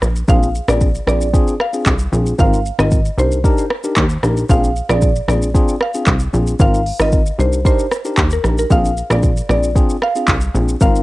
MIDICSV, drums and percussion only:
0, 0, Header, 1, 2, 480
1, 0, Start_track
1, 0, Tempo, 526316
1, 258, Time_signature, 4, 2, 24, 8
1, 10058, End_track
2, 0, Start_track
2, 0, Title_t, "Drums"
2, 17, Note_on_c, 9, 37, 89
2, 22, Note_on_c, 9, 82, 54
2, 108, Note_off_c, 9, 37, 0
2, 113, Note_off_c, 9, 82, 0
2, 143, Note_on_c, 9, 82, 54
2, 235, Note_off_c, 9, 82, 0
2, 257, Note_on_c, 9, 36, 114
2, 258, Note_on_c, 9, 82, 82
2, 349, Note_off_c, 9, 36, 0
2, 349, Note_off_c, 9, 82, 0
2, 391, Note_on_c, 9, 82, 57
2, 482, Note_off_c, 9, 82, 0
2, 502, Note_on_c, 9, 82, 55
2, 593, Note_off_c, 9, 82, 0
2, 622, Note_on_c, 9, 37, 120
2, 626, Note_on_c, 9, 82, 59
2, 714, Note_off_c, 9, 37, 0
2, 717, Note_off_c, 9, 82, 0
2, 736, Note_on_c, 9, 82, 73
2, 740, Note_on_c, 9, 36, 95
2, 827, Note_off_c, 9, 82, 0
2, 831, Note_off_c, 9, 36, 0
2, 864, Note_on_c, 9, 82, 54
2, 956, Note_off_c, 9, 82, 0
2, 978, Note_on_c, 9, 37, 96
2, 987, Note_on_c, 9, 82, 46
2, 1070, Note_off_c, 9, 37, 0
2, 1078, Note_off_c, 9, 82, 0
2, 1104, Note_on_c, 9, 82, 55
2, 1195, Note_off_c, 9, 82, 0
2, 1218, Note_on_c, 9, 36, 111
2, 1224, Note_on_c, 9, 82, 77
2, 1309, Note_off_c, 9, 36, 0
2, 1315, Note_off_c, 9, 82, 0
2, 1345, Note_on_c, 9, 82, 53
2, 1436, Note_off_c, 9, 82, 0
2, 1459, Note_on_c, 9, 37, 104
2, 1550, Note_off_c, 9, 37, 0
2, 1582, Note_on_c, 9, 82, 60
2, 1673, Note_off_c, 9, 82, 0
2, 1693, Note_on_c, 9, 82, 80
2, 1698, Note_on_c, 9, 36, 96
2, 1698, Note_on_c, 9, 39, 92
2, 1784, Note_off_c, 9, 82, 0
2, 1789, Note_off_c, 9, 36, 0
2, 1789, Note_off_c, 9, 39, 0
2, 1813, Note_on_c, 9, 82, 57
2, 1904, Note_off_c, 9, 82, 0
2, 1944, Note_on_c, 9, 82, 53
2, 2036, Note_off_c, 9, 82, 0
2, 2065, Note_on_c, 9, 82, 54
2, 2156, Note_off_c, 9, 82, 0
2, 2179, Note_on_c, 9, 36, 118
2, 2179, Note_on_c, 9, 82, 83
2, 2271, Note_off_c, 9, 36, 0
2, 2271, Note_off_c, 9, 82, 0
2, 2311, Note_on_c, 9, 82, 57
2, 2402, Note_off_c, 9, 82, 0
2, 2423, Note_on_c, 9, 82, 52
2, 2514, Note_off_c, 9, 82, 0
2, 2544, Note_on_c, 9, 37, 117
2, 2547, Note_on_c, 9, 82, 56
2, 2635, Note_off_c, 9, 37, 0
2, 2639, Note_off_c, 9, 82, 0
2, 2657, Note_on_c, 9, 82, 73
2, 2662, Note_on_c, 9, 36, 97
2, 2748, Note_off_c, 9, 82, 0
2, 2753, Note_off_c, 9, 36, 0
2, 2784, Note_on_c, 9, 82, 56
2, 2875, Note_off_c, 9, 82, 0
2, 2907, Note_on_c, 9, 82, 49
2, 2998, Note_off_c, 9, 82, 0
2, 3026, Note_on_c, 9, 82, 55
2, 3117, Note_off_c, 9, 82, 0
2, 3139, Note_on_c, 9, 36, 111
2, 3145, Note_on_c, 9, 82, 79
2, 3230, Note_off_c, 9, 36, 0
2, 3236, Note_off_c, 9, 82, 0
2, 3264, Note_on_c, 9, 82, 53
2, 3356, Note_off_c, 9, 82, 0
2, 3379, Note_on_c, 9, 37, 105
2, 3470, Note_off_c, 9, 37, 0
2, 3501, Note_on_c, 9, 82, 60
2, 3592, Note_off_c, 9, 82, 0
2, 3612, Note_on_c, 9, 82, 76
2, 3617, Note_on_c, 9, 39, 95
2, 3618, Note_on_c, 9, 36, 94
2, 3703, Note_off_c, 9, 82, 0
2, 3708, Note_off_c, 9, 39, 0
2, 3709, Note_off_c, 9, 36, 0
2, 3734, Note_on_c, 9, 82, 58
2, 3825, Note_off_c, 9, 82, 0
2, 3858, Note_on_c, 9, 37, 91
2, 3863, Note_on_c, 9, 82, 52
2, 3950, Note_off_c, 9, 37, 0
2, 3955, Note_off_c, 9, 82, 0
2, 3985, Note_on_c, 9, 82, 53
2, 4076, Note_off_c, 9, 82, 0
2, 4099, Note_on_c, 9, 36, 122
2, 4099, Note_on_c, 9, 82, 81
2, 4190, Note_off_c, 9, 36, 0
2, 4190, Note_off_c, 9, 82, 0
2, 4231, Note_on_c, 9, 82, 58
2, 4322, Note_off_c, 9, 82, 0
2, 4342, Note_on_c, 9, 82, 51
2, 4433, Note_off_c, 9, 82, 0
2, 4464, Note_on_c, 9, 37, 119
2, 4468, Note_on_c, 9, 82, 58
2, 4555, Note_off_c, 9, 37, 0
2, 4559, Note_off_c, 9, 82, 0
2, 4576, Note_on_c, 9, 82, 73
2, 4581, Note_on_c, 9, 36, 94
2, 4667, Note_off_c, 9, 82, 0
2, 4672, Note_off_c, 9, 36, 0
2, 4704, Note_on_c, 9, 82, 55
2, 4795, Note_off_c, 9, 82, 0
2, 4819, Note_on_c, 9, 37, 97
2, 4828, Note_on_c, 9, 82, 49
2, 4911, Note_off_c, 9, 37, 0
2, 4919, Note_off_c, 9, 82, 0
2, 4946, Note_on_c, 9, 82, 56
2, 5037, Note_off_c, 9, 82, 0
2, 5058, Note_on_c, 9, 36, 109
2, 5063, Note_on_c, 9, 82, 75
2, 5149, Note_off_c, 9, 36, 0
2, 5154, Note_off_c, 9, 82, 0
2, 5183, Note_on_c, 9, 82, 54
2, 5274, Note_off_c, 9, 82, 0
2, 5295, Note_on_c, 9, 37, 106
2, 5387, Note_off_c, 9, 37, 0
2, 5418, Note_on_c, 9, 82, 60
2, 5509, Note_off_c, 9, 82, 0
2, 5527, Note_on_c, 9, 82, 75
2, 5532, Note_on_c, 9, 39, 91
2, 5535, Note_on_c, 9, 36, 95
2, 5618, Note_off_c, 9, 82, 0
2, 5624, Note_off_c, 9, 39, 0
2, 5627, Note_off_c, 9, 36, 0
2, 5649, Note_on_c, 9, 82, 57
2, 5740, Note_off_c, 9, 82, 0
2, 5779, Note_on_c, 9, 82, 54
2, 5871, Note_off_c, 9, 82, 0
2, 5901, Note_on_c, 9, 82, 54
2, 5992, Note_off_c, 9, 82, 0
2, 6015, Note_on_c, 9, 82, 85
2, 6017, Note_on_c, 9, 36, 118
2, 6106, Note_off_c, 9, 82, 0
2, 6108, Note_off_c, 9, 36, 0
2, 6148, Note_on_c, 9, 82, 58
2, 6240, Note_off_c, 9, 82, 0
2, 6258, Note_on_c, 9, 46, 54
2, 6350, Note_off_c, 9, 46, 0
2, 6380, Note_on_c, 9, 37, 116
2, 6384, Note_on_c, 9, 82, 60
2, 6471, Note_off_c, 9, 37, 0
2, 6475, Note_off_c, 9, 82, 0
2, 6495, Note_on_c, 9, 82, 71
2, 6500, Note_on_c, 9, 36, 97
2, 6586, Note_off_c, 9, 82, 0
2, 6591, Note_off_c, 9, 36, 0
2, 6622, Note_on_c, 9, 82, 55
2, 6714, Note_off_c, 9, 82, 0
2, 6745, Note_on_c, 9, 82, 48
2, 6837, Note_off_c, 9, 82, 0
2, 6865, Note_on_c, 9, 82, 56
2, 6956, Note_off_c, 9, 82, 0
2, 6978, Note_on_c, 9, 36, 104
2, 6983, Note_on_c, 9, 82, 76
2, 7069, Note_off_c, 9, 36, 0
2, 7074, Note_off_c, 9, 82, 0
2, 7105, Note_on_c, 9, 82, 52
2, 7196, Note_off_c, 9, 82, 0
2, 7218, Note_on_c, 9, 37, 103
2, 7222, Note_on_c, 9, 82, 55
2, 7309, Note_off_c, 9, 37, 0
2, 7313, Note_off_c, 9, 82, 0
2, 7341, Note_on_c, 9, 82, 60
2, 7432, Note_off_c, 9, 82, 0
2, 7451, Note_on_c, 9, 82, 74
2, 7456, Note_on_c, 9, 39, 90
2, 7457, Note_on_c, 9, 36, 94
2, 7542, Note_off_c, 9, 82, 0
2, 7547, Note_off_c, 9, 39, 0
2, 7548, Note_off_c, 9, 36, 0
2, 7573, Note_on_c, 9, 82, 56
2, 7664, Note_off_c, 9, 82, 0
2, 7697, Note_on_c, 9, 37, 89
2, 7702, Note_on_c, 9, 82, 50
2, 7788, Note_off_c, 9, 37, 0
2, 7793, Note_off_c, 9, 82, 0
2, 7826, Note_on_c, 9, 82, 55
2, 7917, Note_off_c, 9, 82, 0
2, 7939, Note_on_c, 9, 36, 117
2, 7939, Note_on_c, 9, 82, 82
2, 8030, Note_off_c, 9, 36, 0
2, 8031, Note_off_c, 9, 82, 0
2, 8072, Note_on_c, 9, 82, 57
2, 8163, Note_off_c, 9, 82, 0
2, 8183, Note_on_c, 9, 82, 53
2, 8274, Note_off_c, 9, 82, 0
2, 8303, Note_on_c, 9, 37, 113
2, 8307, Note_on_c, 9, 82, 55
2, 8394, Note_off_c, 9, 37, 0
2, 8398, Note_off_c, 9, 82, 0
2, 8417, Note_on_c, 9, 82, 74
2, 8420, Note_on_c, 9, 36, 99
2, 8508, Note_off_c, 9, 82, 0
2, 8511, Note_off_c, 9, 36, 0
2, 8545, Note_on_c, 9, 82, 55
2, 8636, Note_off_c, 9, 82, 0
2, 8658, Note_on_c, 9, 37, 99
2, 8666, Note_on_c, 9, 82, 46
2, 8749, Note_off_c, 9, 37, 0
2, 8757, Note_off_c, 9, 82, 0
2, 8785, Note_on_c, 9, 82, 54
2, 8876, Note_off_c, 9, 82, 0
2, 8898, Note_on_c, 9, 36, 112
2, 8904, Note_on_c, 9, 82, 73
2, 8989, Note_off_c, 9, 36, 0
2, 8995, Note_off_c, 9, 82, 0
2, 9025, Note_on_c, 9, 82, 52
2, 9116, Note_off_c, 9, 82, 0
2, 9138, Note_on_c, 9, 37, 99
2, 9229, Note_off_c, 9, 37, 0
2, 9261, Note_on_c, 9, 82, 57
2, 9352, Note_off_c, 9, 82, 0
2, 9370, Note_on_c, 9, 82, 78
2, 9375, Note_on_c, 9, 39, 91
2, 9376, Note_on_c, 9, 36, 94
2, 9461, Note_off_c, 9, 82, 0
2, 9466, Note_off_c, 9, 39, 0
2, 9468, Note_off_c, 9, 36, 0
2, 9491, Note_on_c, 9, 82, 58
2, 9582, Note_off_c, 9, 82, 0
2, 9623, Note_on_c, 9, 82, 53
2, 9714, Note_off_c, 9, 82, 0
2, 9744, Note_on_c, 9, 82, 55
2, 9835, Note_off_c, 9, 82, 0
2, 9858, Note_on_c, 9, 36, 117
2, 9858, Note_on_c, 9, 82, 85
2, 9949, Note_off_c, 9, 36, 0
2, 9949, Note_off_c, 9, 82, 0
2, 9991, Note_on_c, 9, 82, 56
2, 10058, Note_off_c, 9, 82, 0
2, 10058, End_track
0, 0, End_of_file